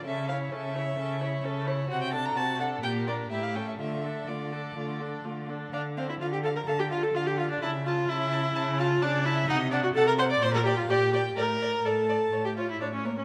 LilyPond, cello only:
\new Staff \with { instrumentName = "Cello" } { \clef bass \time 4/4 \key d \minor \tempo 4 = 128 cis4 cis4 cis4 cis4 | c4 c4 bes,4 a,4 | d4 d4 d4 d4 | d4 d4 d4 d4 |
cis4 cis4 cis4 cis4 | c4 c4 bes,4 bes,4 | a,4 a,4 a,4 a,4 | }